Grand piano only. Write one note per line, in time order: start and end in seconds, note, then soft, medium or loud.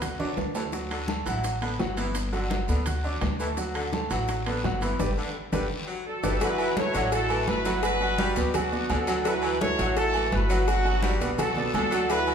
0.02 0.16 F#4 medium
0.02 0.16 F#5 medium
0.02 0.17 F#6 medium
0.20 0.49 D4 medium
0.20 0.49 D5 medium
0.20 0.49 D6 medium
0.55 0.70 A3 medium
0.55 0.70 A4 medium
0.55 0.70 A5 medium
0.72 1.02 F#3 medium
0.72 1.02 F#4 medium
0.72 1.02 F#5 medium
1.08 1.23 A3 medium
1.08 1.23 A4 medium
1.08 1.23 A5 medium
1.26 1.56 F#3 medium
1.26 1.56 F#4 medium
1.26 1.56 F#5 medium
1.62 1.76 B3 medium
1.62 1.77 B4 medium
1.62 1.77 B5 medium
1.79 1.94 F#3 medium
1.79 1.94 F#4 medium
1.79 1.95 F#5 medium
1.97 2.27 B3 medium
1.97 2.27 B4 medium
1.97 2.27 B5 medium
2.32 2.62 F#3 medium
2.32 2.62 F#4 medium
2.32 2.62 F#5 medium
2.69 2.83 B3 medium
2.69 2.83 B4 medium
2.69 2.84 B5 medium
2.87 3.01 F#4 medium
2.87 3.02 F#5 medium
2.87 3.02 F#6 medium
3.04 3.34 D4 medium
3.04 3.34 D5 medium
3.04 3.34 D6 medium
3.40 3.55 A3 medium
3.40 3.55 A4 medium
3.40 3.55 A5 medium
3.57 3.87 F#3 medium
3.57 3.87 F#4 medium
3.57 3.87 F#5 medium
3.93 4.08 A3 medium
3.93 4.08 A4 medium
3.93 4.08 A5 medium
4.10 4.40 F#3 medium
4.10 4.40 F#4 medium
4.10 4.40 F#5 medium
4.46 4.61 B3 medium
4.46 4.61 B4 medium
4.46 4.61 B5 medium
4.64 4.79 F#3 medium
4.64 4.79 F#4 medium
4.64 4.79 F#5 medium
4.82 4.97 B3 medium
4.82 4.97 B4 medium
4.82 4.97 B5 medium
5.00 5.11 G4 medium
5.00 5.11 B4 medium
5.00 5.11 D5 loud
5.52 5.64 G4 loud
5.52 5.64 B4 loud
5.52 5.64 D5 medium
6.23 6.35 G4 loud
6.23 6.35 B4 loud
6.23 6.35 D5 loud
6.41 6.71 F#3 medium
6.41 6.71 F#4 medium
6.41 6.71 F#5 medium
6.77 6.92 A3 medium
6.77 6.92 A4 medium
6.77 6.92 B4 medium
6.95 7.24 F#3 medium
6.95 7.24 F#4 loud
6.95 7.24 F#5 loud
7.30 7.59 A3 medium
7.30 7.60 A4 medium
7.30 7.60 B4 medium
7.66 7.95 F#3 loud
7.66 7.95 F#4 loud
7.66 7.95 F#5 loud
8.01 8.30 F#3 medium
8.01 8.30 F#4 medium
8.01 8.31 F#5 medium
8.37 8.51 B3 medium
8.37 8.52 B4 medium
8.37 8.52 D5 medium
8.54 8.69 F#3 medium
8.54 8.69 F#4 medium
8.54 8.69 F#5 medium
8.72 9.01 B3 medium
8.72 9.01 B4 medium
8.72 9.02 D5 medium
9.08 9.22 F#3 loud
9.08 9.23 F#4 medium
9.08 9.23 F#5 loud
9.25 9.54 F#3 medium
9.25 9.54 F#4 medium
9.25 9.55 F#5 medium
9.61 9.75 A3 medium
9.61 9.76 A4 medium
9.61 9.76 B4 medium
9.79 10.08 F#3 loud
9.79 10.08 F#4 medium
9.79 10.08 F#5 loud
10.15 10.44 A3 medium
10.15 10.44 A4 medium
10.15 10.44 B4 medium
10.50 10.79 F#3 loud
10.50 10.79 F#4 loud
10.50 10.79 F#5 loud
10.85 11.14 F#3 medium
10.85 11.14 F#4 loud
10.85 11.15 F#5 medium
11.21 11.35 B3 medium
11.21 11.35 B4 medium
11.21 11.36 D5 medium
11.38 11.53 F#3 medium
11.38 11.53 F#4 medium
11.38 11.53 F#5 medium
11.57 11.86 B3 medium
11.57 11.86 B4 medium
11.57 11.86 D5 medium
11.92 12.07 F#3 medium
11.92 12.07 F#4 medium
11.92 12.07 F#5 medium
12.09 12.35 F#3 medium
12.09 12.35 F#4 medium
12.09 12.35 F#5 medium